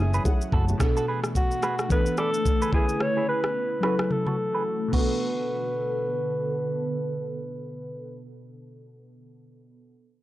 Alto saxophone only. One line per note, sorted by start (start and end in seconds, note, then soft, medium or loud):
0.00 0.49 G#4 loud
1.36 1.87 F#4 medium
1.92 2.17 B4 loud
2.19 2.70 A4 loud
2.74 3.03 G#4 medium
3.02 3.28 C#5 loud
3.29 3.80 B4 loud
3.84 4.13 B4 medium
4.12 4.94 A4 medium
4.94 8.17 B4 medium